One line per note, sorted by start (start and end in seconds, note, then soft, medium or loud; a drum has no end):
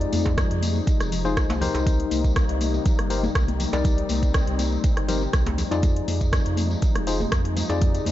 0.00 5.79 C3 medium
0.00 1.83 F3 medium
0.00 1.83 G#3 medium
0.00 1.09 D#4 medium
0.00 5.79 D#4 medium
0.00 1.09 F4 medium
0.00 1.09 G#4 medium
0.00 1.09 D5 medium
0.00 closed hi-hat soft
0.12 0.44 F2 loud
0.12 open hi-hat medium
0.12 tambourine medium
0.12 muted conga soft
0.12 high conga loud
0.12 djembe tone medium
0.26 kick medium
0.26 closed hi-hat soft
0.26 tambourine soft
0.26 djembe slap medium
0.37 kick loud
0.37 cross-stick loud
0.37 closed hi-hat medium
0.37 tambourine medium
0.37 muted conga soft
0.50 0.81 F2 loud
0.50 closed hi-hat soft
0.63 open hi-hat medium
0.63 tambourine medium
0.63 high conga medium
0.76 tambourine soft
0.76 muted conga soft
0.76 high conga medium
0.87 kick loud
0.87 closed hi-hat medium
0.87 tambourine medium
1.00 1.38 F1 medium
1.00 cross-stick medium
1.00 closed hi-hat soft
1.00 tambourine soft
1.00 muted conga medium
1.12 open hi-hat medium
1.12 tambourine medium
1.12 low conga loud
1.25 1.59 D#4 medium
1.25 1.59 F4 medium
1.25 1.59 G#4 medium
1.25 1.59 C5 loud
1.25 tambourine soft
1.25 muted conga soft
1.37 1.68 C2 medium
1.37 kick loud
1.37 cross-stick loud
1.37 closed hi-hat medium
1.37 tambourine soft
1.50 closed hi-hat soft
1.50 tambourine soft
1.50 muted conga soft
1.50 djembe slap loud
1.50 high conga loud
1.50 djembe tone medium
1.61 3.09 D#4 medium
1.61 3.09 G4 medium
1.61 3.09 A#4 medium
1.61 3.09 C5 loud
1.61 open hi-hat medium
1.61 tambourine medium
1.61 djembe tone medium
1.61 low conga loud
1.75 2.05 C2 medium
1.75 closed hi-hat soft
1.75 tambourine soft
1.75 djembe slap medium
1.86 5.79 G3 medium
1.86 3.83 A#3 medium
1.86 kick loud
1.86 closed hi-hat medium
1.86 tambourine medium
1.86 muted conga soft
1.86 low conga medium
2.00 closed hi-hat soft
2.11 2.42 C2 loud
2.11 open hi-hat medium
2.11 tambourine medium
2.11 muted conga soft
2.11 high conga medium
2.24 kick medium
2.24 closed hi-hat soft
2.24 tambourine soft
2.36 kick loud
2.36 cross-stick loud
2.36 closed hi-hat medium
2.36 tambourine soft
2.36 muted conga soft
2.49 2.79 C2 loud
2.49 closed hi-hat soft
2.61 open hi-hat medium
2.61 tambourine medium
2.61 high conga medium
2.74 tambourine soft
2.74 muted conga soft
2.74 high conga medium
2.86 kick loud
2.86 closed hi-hat medium
2.86 tambourine soft
2.86 low conga loud
2.98 3.29 G1 loud
2.98 cross-stick medium
2.98 closed hi-hat soft
2.98 muted conga medium
3.10 3.23 D#4 medium
3.10 3.23 G4 medium
3.10 3.23 A#4 medium
3.10 3.23 C5 medium
3.10 open hi-hat medium
3.10 tambourine loud
3.23 tambourine soft
3.23 muted conga soft
3.23 high conga loud
3.23 djembe tone medium
3.35 3.66 C2 loud
3.35 kick loud
3.35 cross-stick loud
3.35 closed hi-hat medium
3.35 tambourine medium
3.48 closed hi-hat soft
3.48 muted conga medium
3.48 high conga medium
3.60 open hi-hat medium
3.60 tambourine medium
3.60 high conga medium
3.60 low conga loud
3.73 4.03 C2 medium
3.73 5.06 D#4 medium
3.73 5.06 G4 medium
3.73 5.06 A#4 medium
3.73 5.06 D5 loud
3.73 closed hi-hat soft
3.73 tambourine soft
3.73 djembe slap medium
3.84 5.81 C4 medium
3.84 kick loud
3.84 closed hi-hat medium
3.84 tambourine medium
3.84 muted conga medium
3.84 low conga loud
3.98 closed hi-hat soft
4.09 4.40 C2 loud
4.09 open hi-hat medium
4.09 tambourine medium
4.09 muted conga soft
4.09 high conga loud
4.23 kick medium
4.23 closed hi-hat soft
4.23 tambourine soft
4.34 kick loud
4.34 cross-stick loud
4.34 closed hi-hat medium
4.34 tambourine medium
4.34 muted conga soft
4.47 4.78 C2 loud
4.47 closed hi-hat soft
4.59 open hi-hat medium
4.59 tambourine medium
4.59 high conga medium
4.72 tambourine soft
4.72 muted conga soft
4.72 high conga medium
4.84 kick loud
4.84 closed hi-hat medium
4.84 tambourine medium
4.97 5.27 G1 medium
4.97 cross-stick medium
4.97 closed hi-hat soft
4.97 muted conga soft
5.08 5.22 D#4 medium
5.08 5.22 G4 medium
5.08 5.21 A#4 medium
5.08 5.21 C5 medium
5.08 open hi-hat medium
5.08 tambourine medium
5.08 low conga loud
5.21 tambourine soft
5.21 muted conga soft
5.33 5.65 C2 loud
5.33 kick loud
5.33 cross-stick medium
5.33 closed hi-hat medium
5.33 tambourine medium
5.46 closed hi-hat soft
5.46 muted conga soft
5.46 djembe slap medium
5.46 high conga loud
5.46 djembe tone medium
5.58 open hi-hat medium
5.58 tambourine medium
5.58 djembe tone medium
5.58 low conga loud
5.71 6.02 F2 medium
5.71 7.04 D#4 medium
5.71 7.04 F4 medium
5.71 7.04 G#4 medium
5.71 7.04 D5 medium
5.71 closed hi-hat soft
5.71 tambourine soft
5.71 djembe slap medium
5.82 8.12 C3 medium
5.82 8.12 F3 medium
5.82 8.12 G#3 medium
5.82 8.12 D#4 medium
5.82 kick loud
5.82 closed hi-hat medium
5.82 tambourine medium
5.82 muted conga medium
5.82 low conga loud
5.96 closed hi-hat soft
6.07 6.39 F2 loud
6.07 open hi-hat medium
6.07 tambourine medium
6.07 muted conga soft
6.07 high conga medium
6.21 kick medium
6.21 closed hi-hat soft
6.21 tambourine soft
6.33 kick loud
6.33 cross-stick loud
6.33 closed hi-hat medium
6.33 tambourine medium
6.33 muted conga soft
6.46 6.76 F2 loud
6.46 closed hi-hat soft
6.57 open hi-hat medium
6.57 tambourine medium
6.57 high conga medium
6.71 tambourine soft
6.71 muted conga soft
6.71 high conga medium
6.82 kick loud
6.82 closed hi-hat medium
6.82 tambourine soft
6.82 low conga loud
6.95 7.26 F1 medium
6.95 cross-stick medium
6.95 closed hi-hat soft
6.95 muted conga medium
7.07 7.20 D#4 medium
7.07 7.20 F4 medium
7.07 7.20 G#4 medium
7.07 7.20 C5 medium
7.07 open hi-hat medium
7.07 tambourine medium
7.20 tambourine soft
7.20 muted conga soft
7.20 djembe tone medium
7.20 high conga medium
7.32 7.63 F2 loud
7.32 kick loud
7.32 cross-stick loud
7.32 closed hi-hat medium
7.32 tambourine soft
7.45 closed hi-hat soft
7.45 muted conga medium
7.45 high conga medium
7.56 open hi-hat medium
7.56 tambourine medium
7.56 high conga medium
7.56 low conga loud
7.69 8.00 F2 medium
7.69 8.12 D#4 medium
7.69 8.12 F4 medium
7.69 8.12 G#4 medium
7.69 8.12 D5 loud
7.69 closed hi-hat soft
7.69 tambourine soft
7.69 djembe slap medium
7.81 kick loud
7.81 closed hi-hat medium
7.81 tambourine medium
7.81 muted conga medium
7.81 low conga loud
7.95 closed hi-hat soft
7.95 tambourine soft
8.05 8.12 F2 medium
8.05 open hi-hat medium
8.05 tambourine medium
8.05 muted conga soft
8.05 high conga loud
8.05 djembe tone medium